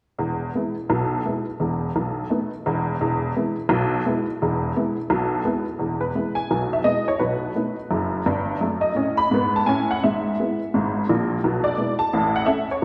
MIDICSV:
0, 0, Header, 1, 2, 480
1, 0, Start_track
1, 0, Key_signature, 4, "major"
1, 0, Tempo, 351083
1, 258, Time_signature, 4, 2, 24, 8
1, 17564, End_track
2, 0, Start_track
2, 0, Title_t, "Honky-tonk piano"
2, 0, Program_c, 0, 3
2, 251, Note_on_c, 0, 28, 50
2, 255, Note_on_c, 0, 40, 63
2, 662, Note_off_c, 0, 28, 0
2, 664, Note_off_c, 0, 40, 0
2, 756, Note_on_c, 0, 56, 34
2, 757, Note_on_c, 0, 59, 35
2, 768, Note_on_c, 0, 64, 41
2, 1014, Note_off_c, 0, 56, 0
2, 1015, Note_off_c, 0, 59, 0
2, 1024, Note_off_c, 0, 64, 0
2, 1220, Note_on_c, 0, 47, 55
2, 1226, Note_on_c, 0, 35, 64
2, 1627, Note_off_c, 0, 47, 0
2, 1630, Note_off_c, 0, 35, 0
2, 1716, Note_on_c, 0, 56, 39
2, 1723, Note_on_c, 0, 64, 47
2, 1724, Note_on_c, 0, 59, 37
2, 1975, Note_off_c, 0, 56, 0
2, 1980, Note_off_c, 0, 64, 0
2, 1981, Note_off_c, 0, 59, 0
2, 2186, Note_on_c, 0, 40, 53
2, 2188, Note_on_c, 0, 28, 60
2, 2566, Note_off_c, 0, 40, 0
2, 2567, Note_off_c, 0, 28, 0
2, 2677, Note_on_c, 0, 35, 55
2, 3054, Note_off_c, 0, 35, 0
2, 3142, Note_on_c, 0, 63, 42
2, 3156, Note_on_c, 0, 57, 42
2, 3157, Note_on_c, 0, 59, 42
2, 3405, Note_off_c, 0, 63, 0
2, 3414, Note_off_c, 0, 57, 0
2, 3416, Note_off_c, 0, 59, 0
2, 3636, Note_on_c, 0, 28, 67
2, 3638, Note_on_c, 0, 40, 72
2, 4012, Note_off_c, 0, 28, 0
2, 4014, Note_off_c, 0, 40, 0
2, 4113, Note_on_c, 0, 28, 62
2, 4116, Note_on_c, 0, 40, 76
2, 4514, Note_off_c, 0, 28, 0
2, 4516, Note_off_c, 0, 40, 0
2, 4601, Note_on_c, 0, 56, 38
2, 4601, Note_on_c, 0, 59, 42
2, 4610, Note_on_c, 0, 64, 45
2, 4858, Note_off_c, 0, 56, 0
2, 4859, Note_off_c, 0, 59, 0
2, 4865, Note_off_c, 0, 64, 0
2, 5046, Note_on_c, 0, 35, 77
2, 5062, Note_on_c, 0, 47, 70
2, 5459, Note_off_c, 0, 35, 0
2, 5468, Note_off_c, 0, 47, 0
2, 5551, Note_on_c, 0, 56, 43
2, 5558, Note_on_c, 0, 59, 45
2, 5567, Note_on_c, 0, 64, 55
2, 5811, Note_off_c, 0, 56, 0
2, 5817, Note_off_c, 0, 59, 0
2, 5823, Note_off_c, 0, 64, 0
2, 6043, Note_on_c, 0, 40, 67
2, 6045, Note_on_c, 0, 28, 67
2, 6440, Note_off_c, 0, 40, 0
2, 6442, Note_off_c, 0, 28, 0
2, 6511, Note_on_c, 0, 59, 39
2, 6514, Note_on_c, 0, 64, 49
2, 6520, Note_on_c, 0, 56, 40
2, 6772, Note_off_c, 0, 59, 0
2, 6774, Note_off_c, 0, 64, 0
2, 6778, Note_off_c, 0, 56, 0
2, 6973, Note_on_c, 0, 35, 70
2, 6985, Note_on_c, 0, 47, 69
2, 7384, Note_off_c, 0, 35, 0
2, 7391, Note_off_c, 0, 47, 0
2, 7451, Note_on_c, 0, 56, 41
2, 7452, Note_on_c, 0, 64, 49
2, 7455, Note_on_c, 0, 59, 49
2, 7717, Note_off_c, 0, 56, 0
2, 7718, Note_off_c, 0, 64, 0
2, 7720, Note_off_c, 0, 59, 0
2, 7917, Note_on_c, 0, 40, 57
2, 7930, Note_on_c, 0, 28, 51
2, 8211, Note_on_c, 0, 71, 58
2, 8334, Note_off_c, 0, 40, 0
2, 8342, Note_off_c, 0, 28, 0
2, 8411, Note_on_c, 0, 56, 31
2, 8419, Note_on_c, 0, 64, 36
2, 8420, Note_on_c, 0, 59, 35
2, 8627, Note_off_c, 0, 71, 0
2, 8677, Note_off_c, 0, 56, 0
2, 8683, Note_off_c, 0, 64, 0
2, 8684, Note_off_c, 0, 59, 0
2, 8684, Note_on_c, 0, 80, 75
2, 8894, Note_on_c, 0, 47, 56
2, 8898, Note_on_c, 0, 35, 56
2, 9129, Note_off_c, 0, 80, 0
2, 9201, Note_on_c, 0, 76, 64
2, 9305, Note_off_c, 0, 47, 0
2, 9307, Note_off_c, 0, 35, 0
2, 9345, Note_off_c, 0, 76, 0
2, 9355, Note_on_c, 0, 75, 79
2, 9358, Note_on_c, 0, 56, 37
2, 9359, Note_on_c, 0, 59, 40
2, 9365, Note_on_c, 0, 64, 41
2, 9628, Note_off_c, 0, 56, 0
2, 9629, Note_off_c, 0, 59, 0
2, 9633, Note_off_c, 0, 64, 0
2, 9638, Note_off_c, 0, 75, 0
2, 9678, Note_on_c, 0, 73, 68
2, 9824, Note_off_c, 0, 73, 0
2, 9835, Note_on_c, 0, 71, 60
2, 9845, Note_on_c, 0, 47, 64
2, 9853, Note_on_c, 0, 35, 46
2, 10260, Note_off_c, 0, 47, 0
2, 10264, Note_off_c, 0, 35, 0
2, 10331, Note_on_c, 0, 57, 34
2, 10335, Note_on_c, 0, 59, 34
2, 10341, Note_on_c, 0, 63, 38
2, 10598, Note_off_c, 0, 57, 0
2, 10601, Note_off_c, 0, 59, 0
2, 10605, Note_off_c, 0, 63, 0
2, 10809, Note_on_c, 0, 42, 64
2, 10818, Note_on_c, 0, 30, 66
2, 11222, Note_off_c, 0, 42, 0
2, 11228, Note_off_c, 0, 30, 0
2, 11287, Note_on_c, 0, 31, 61
2, 11295, Note_on_c, 0, 43, 67
2, 11318, Note_off_c, 0, 71, 0
2, 11677, Note_off_c, 0, 31, 0
2, 11682, Note_off_c, 0, 43, 0
2, 11774, Note_on_c, 0, 42, 57
2, 11792, Note_on_c, 0, 57, 54
2, 12047, Note_on_c, 0, 75, 70
2, 12161, Note_off_c, 0, 42, 0
2, 12172, Note_off_c, 0, 57, 0
2, 12234, Note_on_c, 0, 45, 49
2, 12257, Note_on_c, 0, 61, 61
2, 12466, Note_off_c, 0, 75, 0
2, 12543, Note_on_c, 0, 83, 85
2, 12629, Note_off_c, 0, 45, 0
2, 12643, Note_off_c, 0, 61, 0
2, 12732, Note_on_c, 0, 44, 70
2, 12770, Note_on_c, 0, 59, 66
2, 12981, Note_off_c, 0, 83, 0
2, 13070, Note_on_c, 0, 81, 74
2, 13120, Note_off_c, 0, 44, 0
2, 13143, Note_off_c, 0, 59, 0
2, 13203, Note_off_c, 0, 81, 0
2, 13212, Note_on_c, 0, 80, 81
2, 13218, Note_on_c, 0, 45, 65
2, 13243, Note_on_c, 0, 61, 67
2, 13489, Note_off_c, 0, 80, 0
2, 13544, Note_on_c, 0, 78, 72
2, 13604, Note_off_c, 0, 45, 0
2, 13619, Note_off_c, 0, 61, 0
2, 13680, Note_off_c, 0, 78, 0
2, 13720, Note_on_c, 0, 76, 68
2, 13727, Note_on_c, 0, 32, 50
2, 13728, Note_on_c, 0, 44, 59
2, 14125, Note_off_c, 0, 32, 0
2, 14125, Note_off_c, 0, 44, 0
2, 14213, Note_on_c, 0, 56, 40
2, 14217, Note_on_c, 0, 59, 38
2, 14217, Note_on_c, 0, 64, 42
2, 14469, Note_off_c, 0, 56, 0
2, 14472, Note_off_c, 0, 59, 0
2, 14472, Note_off_c, 0, 64, 0
2, 14687, Note_on_c, 0, 44, 68
2, 14688, Note_on_c, 0, 32, 69
2, 15085, Note_off_c, 0, 32, 0
2, 15085, Note_off_c, 0, 44, 0
2, 15164, Note_on_c, 0, 46, 67
2, 15170, Note_on_c, 0, 34, 64
2, 15184, Note_off_c, 0, 76, 0
2, 15540, Note_off_c, 0, 46, 0
2, 15544, Note_off_c, 0, 34, 0
2, 15641, Note_on_c, 0, 47, 69
2, 15644, Note_on_c, 0, 35, 54
2, 15911, Note_on_c, 0, 74, 77
2, 16042, Note_off_c, 0, 47, 0
2, 16043, Note_off_c, 0, 35, 0
2, 16103, Note_on_c, 0, 56, 35
2, 16106, Note_on_c, 0, 59, 37
2, 16109, Note_on_c, 0, 64, 40
2, 16320, Note_off_c, 0, 74, 0
2, 16367, Note_off_c, 0, 56, 0
2, 16369, Note_off_c, 0, 59, 0
2, 16372, Note_off_c, 0, 64, 0
2, 16390, Note_on_c, 0, 81, 78
2, 16589, Note_on_c, 0, 33, 73
2, 16590, Note_on_c, 0, 45, 72
2, 16825, Note_off_c, 0, 81, 0
2, 16894, Note_on_c, 0, 78, 76
2, 16995, Note_off_c, 0, 33, 0
2, 16995, Note_off_c, 0, 45, 0
2, 17034, Note_off_c, 0, 78, 0
2, 17035, Note_on_c, 0, 76, 77
2, 17041, Note_on_c, 0, 61, 43
2, 17042, Note_on_c, 0, 69, 47
2, 17043, Note_on_c, 0, 57, 43
2, 17311, Note_off_c, 0, 61, 0
2, 17312, Note_off_c, 0, 57, 0
2, 17312, Note_off_c, 0, 69, 0
2, 17319, Note_off_c, 0, 76, 0
2, 17382, Note_on_c, 0, 73, 64
2, 17518, Note_off_c, 0, 73, 0
2, 17564, End_track
0, 0, End_of_file